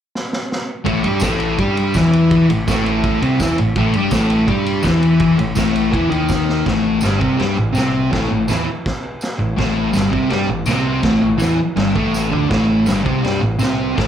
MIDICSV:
0, 0, Header, 1, 4, 480
1, 0, Start_track
1, 0, Key_signature, 0, "minor"
1, 0, Tempo, 362757
1, 1133, Time_signature, 4, 2, 24, 8
1, 8816, Tempo, 365408
1, 18553, End_track
2, 0, Start_track
2, 0, Title_t, "Distorted electric guitar"
2, 0, Program_c, 0, 30
2, 1119, Note_on_c, 0, 45, 93
2, 1126, Note_on_c, 0, 57, 110
2, 1358, Note_off_c, 0, 45, 0
2, 1362, Note_off_c, 0, 57, 0
2, 1368, Note_on_c, 0, 55, 73
2, 1374, Note_on_c, 0, 67, 94
2, 1603, Note_off_c, 0, 55, 0
2, 1603, Note_on_c, 0, 45, 90
2, 1606, Note_off_c, 0, 67, 0
2, 1618, Note_on_c, 0, 57, 103
2, 2080, Note_off_c, 0, 45, 0
2, 2087, Note_off_c, 0, 57, 0
2, 2101, Note_on_c, 0, 55, 94
2, 2112, Note_on_c, 0, 67, 98
2, 2569, Note_off_c, 0, 55, 0
2, 2574, Note_off_c, 0, 67, 0
2, 2579, Note_on_c, 0, 52, 97
2, 2592, Note_on_c, 0, 64, 99
2, 3287, Note_off_c, 0, 52, 0
2, 3293, Note_off_c, 0, 64, 0
2, 3319, Note_on_c, 0, 45, 70
2, 3497, Note_off_c, 0, 45, 0
2, 3542, Note_on_c, 0, 45, 84
2, 3558, Note_on_c, 0, 57, 99
2, 4248, Note_off_c, 0, 45, 0
2, 4256, Note_off_c, 0, 57, 0
2, 4263, Note_on_c, 0, 48, 84
2, 4272, Note_on_c, 0, 60, 112
2, 4489, Note_off_c, 0, 48, 0
2, 4493, Note_off_c, 0, 60, 0
2, 4514, Note_on_c, 0, 52, 86
2, 4523, Note_on_c, 0, 64, 101
2, 4734, Note_off_c, 0, 52, 0
2, 4739, Note_off_c, 0, 64, 0
2, 4757, Note_on_c, 0, 45, 75
2, 4935, Note_off_c, 0, 45, 0
2, 4988, Note_on_c, 0, 45, 104
2, 5003, Note_on_c, 0, 57, 123
2, 5211, Note_off_c, 0, 45, 0
2, 5219, Note_off_c, 0, 57, 0
2, 5249, Note_on_c, 0, 55, 100
2, 5264, Note_on_c, 0, 67, 82
2, 5449, Note_on_c, 0, 45, 88
2, 5462, Note_off_c, 0, 55, 0
2, 5469, Note_off_c, 0, 67, 0
2, 5471, Note_on_c, 0, 57, 106
2, 5918, Note_on_c, 0, 55, 78
2, 5922, Note_off_c, 0, 45, 0
2, 5933, Note_off_c, 0, 57, 0
2, 5942, Note_on_c, 0, 67, 97
2, 6388, Note_on_c, 0, 52, 87
2, 6397, Note_off_c, 0, 55, 0
2, 6403, Note_on_c, 0, 64, 90
2, 6409, Note_off_c, 0, 67, 0
2, 7099, Note_off_c, 0, 52, 0
2, 7105, Note_on_c, 0, 45, 61
2, 7120, Note_off_c, 0, 64, 0
2, 7310, Note_off_c, 0, 45, 0
2, 7345, Note_on_c, 0, 45, 90
2, 7363, Note_on_c, 0, 57, 103
2, 7823, Note_off_c, 0, 45, 0
2, 7828, Note_on_c, 0, 52, 93
2, 7838, Note_off_c, 0, 57, 0
2, 7843, Note_on_c, 0, 64, 84
2, 8062, Note_off_c, 0, 52, 0
2, 8066, Note_off_c, 0, 64, 0
2, 8067, Note_on_c, 0, 51, 92
2, 8071, Note_on_c, 0, 63, 99
2, 8795, Note_off_c, 0, 51, 0
2, 8797, Note_off_c, 0, 63, 0
2, 8815, Note_on_c, 0, 45, 86
2, 8827, Note_on_c, 0, 57, 97
2, 9278, Note_on_c, 0, 43, 82
2, 9287, Note_off_c, 0, 45, 0
2, 9293, Note_off_c, 0, 57, 0
2, 9295, Note_on_c, 0, 55, 100
2, 9515, Note_on_c, 0, 48, 91
2, 9519, Note_off_c, 0, 43, 0
2, 9527, Note_off_c, 0, 55, 0
2, 9529, Note_on_c, 0, 60, 100
2, 9740, Note_on_c, 0, 55, 85
2, 9757, Note_off_c, 0, 48, 0
2, 9764, Note_off_c, 0, 60, 0
2, 9767, Note_on_c, 0, 67, 93
2, 9990, Note_off_c, 0, 55, 0
2, 10003, Note_off_c, 0, 67, 0
2, 10009, Note_on_c, 0, 45, 68
2, 10203, Note_off_c, 0, 45, 0
2, 10219, Note_on_c, 0, 48, 85
2, 10245, Note_on_c, 0, 60, 87
2, 10708, Note_off_c, 0, 48, 0
2, 10718, Note_on_c, 0, 45, 92
2, 10721, Note_off_c, 0, 60, 0
2, 10739, Note_on_c, 0, 57, 108
2, 10958, Note_off_c, 0, 45, 0
2, 10969, Note_off_c, 0, 57, 0
2, 10976, Note_on_c, 0, 45, 64
2, 11166, Note_off_c, 0, 45, 0
2, 11203, Note_on_c, 0, 52, 91
2, 11225, Note_on_c, 0, 64, 88
2, 11441, Note_off_c, 0, 52, 0
2, 11452, Note_off_c, 0, 64, 0
2, 12398, Note_on_c, 0, 45, 72
2, 12598, Note_off_c, 0, 45, 0
2, 12630, Note_on_c, 0, 45, 90
2, 12644, Note_on_c, 0, 57, 99
2, 13077, Note_on_c, 0, 43, 97
2, 13091, Note_on_c, 0, 55, 110
2, 13115, Note_off_c, 0, 45, 0
2, 13122, Note_off_c, 0, 57, 0
2, 13333, Note_on_c, 0, 48, 90
2, 13338, Note_off_c, 0, 43, 0
2, 13346, Note_off_c, 0, 55, 0
2, 13348, Note_on_c, 0, 60, 105
2, 13578, Note_on_c, 0, 55, 79
2, 13587, Note_off_c, 0, 48, 0
2, 13594, Note_off_c, 0, 60, 0
2, 13594, Note_on_c, 0, 67, 109
2, 13829, Note_off_c, 0, 55, 0
2, 13837, Note_off_c, 0, 67, 0
2, 13837, Note_on_c, 0, 45, 72
2, 14066, Note_off_c, 0, 45, 0
2, 14066, Note_on_c, 0, 48, 81
2, 14088, Note_on_c, 0, 60, 97
2, 14537, Note_off_c, 0, 48, 0
2, 14542, Note_on_c, 0, 45, 97
2, 14544, Note_off_c, 0, 60, 0
2, 14549, Note_on_c, 0, 57, 101
2, 14784, Note_off_c, 0, 45, 0
2, 14795, Note_off_c, 0, 57, 0
2, 14799, Note_on_c, 0, 45, 67
2, 15000, Note_off_c, 0, 45, 0
2, 15009, Note_on_c, 0, 52, 95
2, 15016, Note_on_c, 0, 64, 100
2, 15266, Note_off_c, 0, 52, 0
2, 15269, Note_off_c, 0, 64, 0
2, 15514, Note_on_c, 0, 43, 84
2, 15528, Note_on_c, 0, 55, 98
2, 15758, Note_off_c, 0, 43, 0
2, 15765, Note_off_c, 0, 55, 0
2, 15769, Note_on_c, 0, 45, 85
2, 15772, Note_on_c, 0, 57, 99
2, 16223, Note_off_c, 0, 45, 0
2, 16228, Note_on_c, 0, 50, 73
2, 16234, Note_off_c, 0, 57, 0
2, 16239, Note_on_c, 0, 62, 97
2, 16460, Note_off_c, 0, 50, 0
2, 16465, Note_on_c, 0, 45, 84
2, 16481, Note_off_c, 0, 62, 0
2, 16490, Note_on_c, 0, 57, 104
2, 16954, Note_off_c, 0, 45, 0
2, 16959, Note_on_c, 0, 43, 95
2, 16967, Note_off_c, 0, 57, 0
2, 16970, Note_on_c, 0, 55, 103
2, 17184, Note_on_c, 0, 48, 89
2, 17190, Note_on_c, 0, 60, 101
2, 17201, Note_off_c, 0, 43, 0
2, 17207, Note_off_c, 0, 55, 0
2, 17419, Note_on_c, 0, 55, 81
2, 17434, Note_off_c, 0, 48, 0
2, 17437, Note_off_c, 0, 60, 0
2, 17440, Note_on_c, 0, 67, 90
2, 17671, Note_off_c, 0, 55, 0
2, 17674, Note_on_c, 0, 45, 78
2, 17682, Note_off_c, 0, 67, 0
2, 17878, Note_off_c, 0, 45, 0
2, 17914, Note_on_c, 0, 48, 89
2, 17929, Note_on_c, 0, 60, 98
2, 18392, Note_off_c, 0, 48, 0
2, 18398, Note_on_c, 0, 45, 89
2, 18406, Note_off_c, 0, 60, 0
2, 18419, Note_on_c, 0, 57, 100
2, 18553, Note_off_c, 0, 45, 0
2, 18553, Note_off_c, 0, 57, 0
2, 18553, End_track
3, 0, Start_track
3, 0, Title_t, "Fingered electric bass"
3, 0, Program_c, 1, 33
3, 1138, Note_on_c, 1, 33, 104
3, 1358, Note_off_c, 1, 33, 0
3, 1387, Note_on_c, 1, 43, 95
3, 1603, Note_off_c, 1, 43, 0
3, 1620, Note_on_c, 1, 33, 100
3, 2062, Note_off_c, 1, 33, 0
3, 2114, Note_on_c, 1, 43, 94
3, 2549, Note_off_c, 1, 43, 0
3, 2593, Note_on_c, 1, 40, 97
3, 3251, Note_off_c, 1, 40, 0
3, 3309, Note_on_c, 1, 33, 76
3, 3523, Note_off_c, 1, 33, 0
3, 3544, Note_on_c, 1, 33, 99
3, 4207, Note_off_c, 1, 33, 0
3, 4262, Note_on_c, 1, 36, 106
3, 4479, Note_off_c, 1, 36, 0
3, 4508, Note_on_c, 1, 40, 90
3, 4722, Note_off_c, 1, 40, 0
3, 4753, Note_on_c, 1, 33, 81
3, 4965, Note_off_c, 1, 33, 0
3, 4984, Note_on_c, 1, 33, 103
3, 5200, Note_off_c, 1, 33, 0
3, 5228, Note_on_c, 1, 43, 93
3, 5442, Note_off_c, 1, 43, 0
3, 5450, Note_on_c, 1, 33, 95
3, 5896, Note_off_c, 1, 33, 0
3, 5931, Note_on_c, 1, 43, 99
3, 6377, Note_off_c, 1, 43, 0
3, 6424, Note_on_c, 1, 40, 93
3, 7088, Note_off_c, 1, 40, 0
3, 7126, Note_on_c, 1, 33, 81
3, 7352, Note_off_c, 1, 33, 0
3, 7372, Note_on_c, 1, 33, 94
3, 7819, Note_off_c, 1, 33, 0
3, 7863, Note_on_c, 1, 40, 103
3, 8072, Note_off_c, 1, 40, 0
3, 8080, Note_on_c, 1, 39, 111
3, 8758, Note_off_c, 1, 39, 0
3, 8825, Note_on_c, 1, 33, 96
3, 9266, Note_off_c, 1, 33, 0
3, 9300, Note_on_c, 1, 31, 79
3, 9520, Note_off_c, 1, 31, 0
3, 9538, Note_on_c, 1, 36, 88
3, 9759, Note_off_c, 1, 36, 0
3, 9783, Note_on_c, 1, 43, 97
3, 10002, Note_off_c, 1, 43, 0
3, 10026, Note_on_c, 1, 33, 87
3, 10243, Note_off_c, 1, 33, 0
3, 10257, Note_on_c, 1, 36, 93
3, 10701, Note_off_c, 1, 36, 0
3, 10756, Note_on_c, 1, 33, 100
3, 10969, Note_off_c, 1, 33, 0
3, 10989, Note_on_c, 1, 33, 72
3, 11205, Note_off_c, 1, 33, 0
3, 11237, Note_on_c, 1, 40, 90
3, 11449, Note_off_c, 1, 40, 0
3, 12423, Note_on_c, 1, 33, 75
3, 12642, Note_off_c, 1, 33, 0
3, 12668, Note_on_c, 1, 33, 90
3, 13108, Note_off_c, 1, 33, 0
3, 13136, Note_on_c, 1, 31, 82
3, 13358, Note_off_c, 1, 31, 0
3, 13365, Note_on_c, 1, 36, 89
3, 13593, Note_off_c, 1, 36, 0
3, 13621, Note_on_c, 1, 43, 92
3, 13829, Note_off_c, 1, 43, 0
3, 13837, Note_on_c, 1, 33, 96
3, 14064, Note_off_c, 1, 33, 0
3, 14072, Note_on_c, 1, 36, 85
3, 14529, Note_off_c, 1, 36, 0
3, 14571, Note_on_c, 1, 33, 103
3, 14797, Note_off_c, 1, 33, 0
3, 14809, Note_on_c, 1, 33, 78
3, 15035, Note_off_c, 1, 33, 0
3, 15064, Note_on_c, 1, 40, 83
3, 15284, Note_off_c, 1, 40, 0
3, 15520, Note_on_c, 1, 31, 94
3, 15751, Note_off_c, 1, 31, 0
3, 15771, Note_on_c, 1, 33, 108
3, 16220, Note_off_c, 1, 33, 0
3, 16252, Note_on_c, 1, 38, 91
3, 16478, Note_off_c, 1, 38, 0
3, 16498, Note_on_c, 1, 33, 97
3, 16945, Note_off_c, 1, 33, 0
3, 16987, Note_on_c, 1, 31, 88
3, 17206, Note_off_c, 1, 31, 0
3, 17223, Note_on_c, 1, 36, 99
3, 17444, Note_off_c, 1, 36, 0
3, 17464, Note_on_c, 1, 43, 92
3, 17684, Note_off_c, 1, 43, 0
3, 17704, Note_on_c, 1, 33, 81
3, 17919, Note_off_c, 1, 33, 0
3, 17927, Note_on_c, 1, 36, 86
3, 18378, Note_off_c, 1, 36, 0
3, 18432, Note_on_c, 1, 33, 94
3, 18553, Note_off_c, 1, 33, 0
3, 18553, End_track
4, 0, Start_track
4, 0, Title_t, "Drums"
4, 204, Note_on_c, 9, 38, 69
4, 336, Note_off_c, 9, 38, 0
4, 436, Note_on_c, 9, 38, 84
4, 568, Note_off_c, 9, 38, 0
4, 690, Note_on_c, 9, 38, 86
4, 822, Note_off_c, 9, 38, 0
4, 1140, Note_on_c, 9, 51, 108
4, 1142, Note_on_c, 9, 36, 116
4, 1272, Note_off_c, 9, 51, 0
4, 1275, Note_off_c, 9, 36, 0
4, 1375, Note_on_c, 9, 51, 74
4, 1507, Note_off_c, 9, 51, 0
4, 1583, Note_on_c, 9, 54, 100
4, 1603, Note_on_c, 9, 51, 109
4, 1616, Note_on_c, 9, 36, 116
4, 1622, Note_on_c, 9, 38, 113
4, 1716, Note_off_c, 9, 54, 0
4, 1736, Note_off_c, 9, 51, 0
4, 1748, Note_off_c, 9, 36, 0
4, 1754, Note_off_c, 9, 38, 0
4, 1850, Note_on_c, 9, 51, 84
4, 1982, Note_off_c, 9, 51, 0
4, 2096, Note_on_c, 9, 51, 108
4, 2099, Note_on_c, 9, 36, 113
4, 2229, Note_off_c, 9, 51, 0
4, 2231, Note_off_c, 9, 36, 0
4, 2343, Note_on_c, 9, 51, 79
4, 2475, Note_off_c, 9, 51, 0
4, 2568, Note_on_c, 9, 54, 79
4, 2580, Note_on_c, 9, 36, 98
4, 2581, Note_on_c, 9, 51, 83
4, 2600, Note_on_c, 9, 38, 101
4, 2700, Note_off_c, 9, 54, 0
4, 2713, Note_off_c, 9, 36, 0
4, 2714, Note_off_c, 9, 51, 0
4, 2732, Note_off_c, 9, 38, 0
4, 2822, Note_on_c, 9, 51, 85
4, 2955, Note_off_c, 9, 51, 0
4, 3055, Note_on_c, 9, 51, 107
4, 3059, Note_on_c, 9, 36, 120
4, 3187, Note_off_c, 9, 51, 0
4, 3191, Note_off_c, 9, 36, 0
4, 3305, Note_on_c, 9, 51, 85
4, 3437, Note_off_c, 9, 51, 0
4, 3543, Note_on_c, 9, 36, 115
4, 3546, Note_on_c, 9, 54, 96
4, 3547, Note_on_c, 9, 51, 99
4, 3566, Note_on_c, 9, 38, 113
4, 3676, Note_off_c, 9, 36, 0
4, 3678, Note_off_c, 9, 54, 0
4, 3680, Note_off_c, 9, 51, 0
4, 3698, Note_off_c, 9, 38, 0
4, 3786, Note_on_c, 9, 51, 72
4, 3919, Note_off_c, 9, 51, 0
4, 4017, Note_on_c, 9, 51, 88
4, 4020, Note_on_c, 9, 36, 113
4, 4149, Note_off_c, 9, 51, 0
4, 4152, Note_off_c, 9, 36, 0
4, 4265, Note_on_c, 9, 51, 76
4, 4397, Note_off_c, 9, 51, 0
4, 4494, Note_on_c, 9, 54, 85
4, 4500, Note_on_c, 9, 36, 103
4, 4500, Note_on_c, 9, 51, 89
4, 4518, Note_on_c, 9, 38, 106
4, 4626, Note_off_c, 9, 54, 0
4, 4632, Note_off_c, 9, 51, 0
4, 4633, Note_off_c, 9, 36, 0
4, 4651, Note_off_c, 9, 38, 0
4, 4737, Note_on_c, 9, 51, 69
4, 4869, Note_off_c, 9, 51, 0
4, 4970, Note_on_c, 9, 51, 104
4, 4975, Note_on_c, 9, 36, 123
4, 5102, Note_off_c, 9, 51, 0
4, 5108, Note_off_c, 9, 36, 0
4, 5207, Note_on_c, 9, 51, 68
4, 5339, Note_off_c, 9, 51, 0
4, 5438, Note_on_c, 9, 51, 95
4, 5438, Note_on_c, 9, 54, 93
4, 5448, Note_on_c, 9, 36, 103
4, 5457, Note_on_c, 9, 38, 112
4, 5570, Note_off_c, 9, 54, 0
4, 5571, Note_off_c, 9, 51, 0
4, 5580, Note_off_c, 9, 36, 0
4, 5589, Note_off_c, 9, 38, 0
4, 5687, Note_on_c, 9, 51, 79
4, 5820, Note_off_c, 9, 51, 0
4, 5928, Note_on_c, 9, 36, 112
4, 5929, Note_on_c, 9, 51, 97
4, 6060, Note_off_c, 9, 36, 0
4, 6062, Note_off_c, 9, 51, 0
4, 6171, Note_on_c, 9, 51, 76
4, 6303, Note_off_c, 9, 51, 0
4, 6387, Note_on_c, 9, 54, 83
4, 6410, Note_on_c, 9, 36, 95
4, 6415, Note_on_c, 9, 51, 93
4, 6433, Note_on_c, 9, 38, 102
4, 6519, Note_off_c, 9, 54, 0
4, 6542, Note_off_c, 9, 36, 0
4, 6547, Note_off_c, 9, 51, 0
4, 6566, Note_off_c, 9, 38, 0
4, 6649, Note_on_c, 9, 51, 76
4, 6781, Note_off_c, 9, 51, 0
4, 6874, Note_on_c, 9, 51, 100
4, 6886, Note_on_c, 9, 36, 117
4, 7007, Note_off_c, 9, 51, 0
4, 7019, Note_off_c, 9, 36, 0
4, 7129, Note_on_c, 9, 51, 76
4, 7262, Note_off_c, 9, 51, 0
4, 7347, Note_on_c, 9, 54, 97
4, 7369, Note_on_c, 9, 36, 101
4, 7369, Note_on_c, 9, 51, 97
4, 7388, Note_on_c, 9, 38, 107
4, 7480, Note_off_c, 9, 54, 0
4, 7501, Note_off_c, 9, 36, 0
4, 7501, Note_off_c, 9, 51, 0
4, 7520, Note_off_c, 9, 38, 0
4, 7614, Note_on_c, 9, 51, 80
4, 7747, Note_off_c, 9, 51, 0
4, 7853, Note_on_c, 9, 36, 108
4, 7862, Note_on_c, 9, 51, 89
4, 7986, Note_off_c, 9, 36, 0
4, 7994, Note_off_c, 9, 51, 0
4, 8093, Note_on_c, 9, 51, 66
4, 8225, Note_off_c, 9, 51, 0
4, 8317, Note_on_c, 9, 54, 92
4, 8329, Note_on_c, 9, 51, 82
4, 8333, Note_on_c, 9, 36, 107
4, 8347, Note_on_c, 9, 38, 98
4, 8449, Note_off_c, 9, 54, 0
4, 8461, Note_off_c, 9, 51, 0
4, 8465, Note_off_c, 9, 36, 0
4, 8480, Note_off_c, 9, 38, 0
4, 8591, Note_on_c, 9, 38, 68
4, 8723, Note_off_c, 9, 38, 0
4, 8816, Note_on_c, 9, 36, 109
4, 8817, Note_on_c, 9, 49, 57
4, 8835, Note_on_c, 9, 38, 109
4, 8948, Note_off_c, 9, 36, 0
4, 8948, Note_off_c, 9, 49, 0
4, 8967, Note_off_c, 9, 38, 0
4, 9269, Note_on_c, 9, 54, 110
4, 9297, Note_on_c, 9, 49, 55
4, 9315, Note_on_c, 9, 38, 101
4, 9400, Note_off_c, 9, 54, 0
4, 9428, Note_off_c, 9, 49, 0
4, 9446, Note_off_c, 9, 38, 0
4, 9539, Note_on_c, 9, 36, 116
4, 9670, Note_off_c, 9, 36, 0
4, 9777, Note_on_c, 9, 49, 52
4, 9795, Note_on_c, 9, 38, 109
4, 9908, Note_off_c, 9, 49, 0
4, 9927, Note_off_c, 9, 38, 0
4, 10241, Note_on_c, 9, 54, 93
4, 10264, Note_on_c, 9, 49, 52
4, 10282, Note_on_c, 9, 38, 106
4, 10372, Note_off_c, 9, 54, 0
4, 10395, Note_off_c, 9, 49, 0
4, 10414, Note_off_c, 9, 38, 0
4, 10740, Note_on_c, 9, 49, 65
4, 10744, Note_on_c, 9, 36, 108
4, 10758, Note_on_c, 9, 38, 112
4, 10871, Note_off_c, 9, 49, 0
4, 10875, Note_off_c, 9, 36, 0
4, 10889, Note_off_c, 9, 38, 0
4, 11203, Note_on_c, 9, 54, 88
4, 11226, Note_on_c, 9, 49, 52
4, 11245, Note_on_c, 9, 38, 110
4, 11335, Note_off_c, 9, 54, 0
4, 11358, Note_off_c, 9, 49, 0
4, 11376, Note_off_c, 9, 38, 0
4, 11698, Note_on_c, 9, 49, 52
4, 11702, Note_on_c, 9, 36, 109
4, 11717, Note_on_c, 9, 38, 94
4, 11830, Note_off_c, 9, 49, 0
4, 11833, Note_off_c, 9, 36, 0
4, 11848, Note_off_c, 9, 38, 0
4, 12162, Note_on_c, 9, 54, 78
4, 12177, Note_on_c, 9, 49, 50
4, 12195, Note_on_c, 9, 38, 99
4, 12293, Note_off_c, 9, 54, 0
4, 12308, Note_off_c, 9, 49, 0
4, 12326, Note_off_c, 9, 38, 0
4, 12654, Note_on_c, 9, 49, 52
4, 12655, Note_on_c, 9, 36, 105
4, 12672, Note_on_c, 9, 38, 118
4, 12785, Note_off_c, 9, 49, 0
4, 12786, Note_off_c, 9, 36, 0
4, 12804, Note_off_c, 9, 38, 0
4, 13112, Note_on_c, 9, 54, 96
4, 13137, Note_on_c, 9, 49, 53
4, 13156, Note_on_c, 9, 38, 105
4, 13244, Note_off_c, 9, 54, 0
4, 13269, Note_off_c, 9, 49, 0
4, 13287, Note_off_c, 9, 38, 0
4, 13370, Note_on_c, 9, 36, 109
4, 13501, Note_off_c, 9, 36, 0
4, 13597, Note_on_c, 9, 49, 61
4, 13616, Note_on_c, 9, 38, 107
4, 13729, Note_off_c, 9, 49, 0
4, 13747, Note_off_c, 9, 38, 0
4, 14063, Note_on_c, 9, 54, 87
4, 14088, Note_on_c, 9, 49, 58
4, 14106, Note_on_c, 9, 38, 91
4, 14194, Note_off_c, 9, 54, 0
4, 14219, Note_off_c, 9, 49, 0
4, 14237, Note_off_c, 9, 38, 0
4, 14551, Note_on_c, 9, 49, 62
4, 14560, Note_on_c, 9, 36, 109
4, 14570, Note_on_c, 9, 38, 118
4, 14683, Note_off_c, 9, 49, 0
4, 14692, Note_off_c, 9, 36, 0
4, 14701, Note_off_c, 9, 38, 0
4, 15032, Note_on_c, 9, 54, 107
4, 15041, Note_on_c, 9, 49, 50
4, 15059, Note_on_c, 9, 38, 104
4, 15163, Note_off_c, 9, 54, 0
4, 15172, Note_off_c, 9, 49, 0
4, 15190, Note_off_c, 9, 38, 0
4, 15521, Note_on_c, 9, 49, 58
4, 15539, Note_on_c, 9, 38, 107
4, 15652, Note_off_c, 9, 49, 0
4, 15670, Note_off_c, 9, 38, 0
4, 15769, Note_on_c, 9, 36, 101
4, 15901, Note_off_c, 9, 36, 0
4, 16015, Note_on_c, 9, 54, 99
4, 16023, Note_on_c, 9, 38, 57
4, 16146, Note_off_c, 9, 54, 0
4, 16155, Note_off_c, 9, 38, 0
4, 16256, Note_on_c, 9, 43, 87
4, 16388, Note_off_c, 9, 43, 0
4, 16491, Note_on_c, 9, 49, 62
4, 16496, Note_on_c, 9, 36, 107
4, 16510, Note_on_c, 9, 38, 113
4, 16623, Note_off_c, 9, 49, 0
4, 16627, Note_off_c, 9, 36, 0
4, 16641, Note_off_c, 9, 38, 0
4, 16959, Note_on_c, 9, 54, 103
4, 16971, Note_on_c, 9, 49, 53
4, 16989, Note_on_c, 9, 38, 109
4, 17090, Note_off_c, 9, 54, 0
4, 17102, Note_off_c, 9, 49, 0
4, 17121, Note_off_c, 9, 38, 0
4, 17219, Note_on_c, 9, 36, 115
4, 17351, Note_off_c, 9, 36, 0
4, 17462, Note_on_c, 9, 49, 56
4, 17481, Note_on_c, 9, 38, 101
4, 17594, Note_off_c, 9, 49, 0
4, 17612, Note_off_c, 9, 38, 0
4, 17919, Note_on_c, 9, 54, 87
4, 17945, Note_on_c, 9, 49, 50
4, 17963, Note_on_c, 9, 38, 101
4, 18051, Note_off_c, 9, 54, 0
4, 18076, Note_off_c, 9, 49, 0
4, 18094, Note_off_c, 9, 38, 0
4, 18427, Note_on_c, 9, 36, 119
4, 18427, Note_on_c, 9, 49, 64
4, 18446, Note_on_c, 9, 38, 108
4, 18553, Note_off_c, 9, 36, 0
4, 18553, Note_off_c, 9, 38, 0
4, 18553, Note_off_c, 9, 49, 0
4, 18553, End_track
0, 0, End_of_file